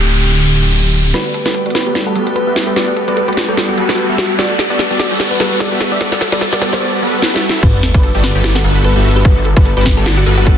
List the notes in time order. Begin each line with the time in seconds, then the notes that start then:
Already playing: D1 D3 A3 C4 G4, riser
1.14 G3 A3 B3 F#4 G4 A4 B4 D5, snare, closed hi-hat, riser
1.25 F#5
1.34 A4, closed hi-hat
1.46 G3 B3 F#4 A4 B4 D5, snare, closed hi-hat
1.55 A4, closed hi-hat
1.66 G3 B3 F#4 G4 A4 D5, closed hi-hat
1.70 closed hi-hat
1.75 F#4 B4, snare, closed hi-hat
1.86 G3 B3 F#4 G4 A4 D5
1.95 F#4, snare, closed hi-hat
2.07 A4 F#5
2.15 G3 B3 F#4 A4 B4, closed hi-hat
2.27 B4, closed hi-hat
2.36 A4 B4, closed hi-hat
2.47 G3 B3 F#4 G4 A4 E5
2.56 F#4, snare, closed hi-hat
2.60 closed hi-hat
2.63 closed hi-hat
2.67 G4 B4
2.76 G3 B3 F#4 A4 D5, snare, closed hi-hat
2.87 F#5
2.96 A4, closed hi-hat
3.08 G3 B3 F#4 A4 B4 D5, closed hi-hat
3.17 A4, closed hi-hat
3.28 G3 B3 F#4 G4 A4 B4 D5, closed hi-hat
3.33 closed hi-hat
3.37 F#4, snare, closed hi-hat
3.48 G3 B3 F#4 G4 A4 D5
3.57 F#4, snare, closed hi-hat
3.69 F#4 F#5
3.78 G3 B3 F#4 A4 B4, closed hi-hat
3.89 F#4 B4, snare, closed hi-hat
3.98 A4, closed hi-hat
4.09 G3 B3 F#4 G4 A4 E5
4.18 F#4, snare, closed hi-hat
4.22 closed hi-hat
4.25 closed hi-hat
4.30 G4
4.38 G3 B3 F#4 A4 D5, snare, closed hi-hat
4.50 F#5
4.59 A4, snare, closed hi-hat
4.70 G3 B3 F#4 A4 B4 D5, closed hi-hat
4.79 A4, snare, closed hi-hat
4.90 G3 B3 F#4 G4 A4 D5, closed hi-hat
4.95 closed hi-hat
4.99 F#4 D5, snare
5.11 G3 B3 F#4 G4 A4 D5
5.20 F#4, snare, closed hi-hat
5.31 B4 F#5
5.40 G3 B3 F#4 A4 B4, snare, closed hi-hat
5.51 B4, closed hi-hat
5.60 A4 D5, snare, closed hi-hat
5.71 G3 B3 F#4 G4 A4 E5
5.81 F#4, snare, closed hi-hat
5.84 closed hi-hat
5.87 closed hi-hat
5.92 G4 D5
6.01 G3 B3 F#4 A4 D5, snare, closed hi-hat
6.12 F#5, snare
6.21 A4, snare, closed hi-hat
6.32 G3 B3 F#4 A4 B4 D5, snare, closed hi-hat
6.41 A4, snare, closed hi-hat
6.52 G3 B3 F#4 G4 A4 D5, snare, closed hi-hat
6.57 closed hi-hat
6.62 F#4, snare, closed hi-hat
6.73 G3 B3 F#4 G4 A4 C5 D5, snare
7.02 G3 B3 F#4 A4 B4
7.22 snare
7.34 G3 B3 F#4 A4 E5, snare
7.49 snare
7.63 G1 G3 B3 F#4 A4 B4 D5, kick, closed hi-hat, crash, sub drop
7.74 F#5
7.83 A4, snare, closed hi-hat
7.94 G1 G3 B3 F#4 A4 B4 D5, kick, closed hi-hat
8.03 A4, closed hi-hat
8.15 G1 G3 B3 F#4 G4 A4 D5, closed hi-hat
8.19 closed hi-hat
8.24 F#4 B4, snare, closed hi-hat
8.35 G1 G3 B3 F#4 G4 A4 D5
8.44 F#4, snare, closed hi-hat
8.55 A4 F#5, snare
8.64 G1 G3 B3 F#4 A4 B4, closed hi-hat
8.76 B4, closed hi-hat
8.85 A4 B4, closed hi-hat
8.96 G1 G3 B3 F#4 G4 A4 E5
9.05 F#4, closed hi-hat, open hi-hat
9.11 closed hi-hat
9.16 G4 B4
9.25 G1 G3 B3 F#4 A4 D5, kick, closed hi-hat
9.37 F#5
9.45 A4, closed hi-hat
9.57 G1 G3 B3 F#4 A4 B4 D5, kick, closed hi-hat
9.65 A4, closed hi-hat
9.77 G1 G3 B3 F#4 G4 A4 B4 D5, closed hi-hat
9.81 closed hi-hat
9.86 F#4, kick, snare, closed hi-hat
9.97 G1 G3 B3 F#4 G4 A4 D5
10.06 F#4, snare, closed hi-hat
10.17 F#4 F#5
10.26 G1 G3 B3 F#4 A4 B4, closed hi-hat
10.38 F#4 B4, closed hi-hat
10.47 A4, kick, closed hi-hat